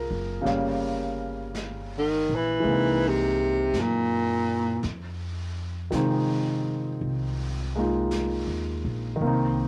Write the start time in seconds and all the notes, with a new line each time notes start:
Already playing: F3 G#3 A#3 C4 D#4 F4 G#4 A#4
0.11 F#1
0.41 C#3 G3 A#3 C#4
0.46 G1 F5, brush sweep, snare
1.55 brush sweep, snare, hi-hat pedal
1.98 D#3
2.29 A#1
2.36 E3
2.60 E3 G#3, brush sweep
2.64 C2 A#3 C4
2.72 D#4
3.08 C3
3.73 F#2, brush sweep, snare, hi-hat pedal
3.81 A#2
4.83 F2, brush sweep, snare
5.90 C3 D#3 F3 G#3 C4, brush sweep, snare, hi-hat pedal
5.96 D#4
7.01 C2, brush sweep
7.75 G#3 A#3 D#4 F4
8.11 brush sweep, snare, hi-hat pedal
8.47 D#2
8.85 A#1
9.16 D#3
9.21 C2 A#3 C4, brush sweep
9.27 D#4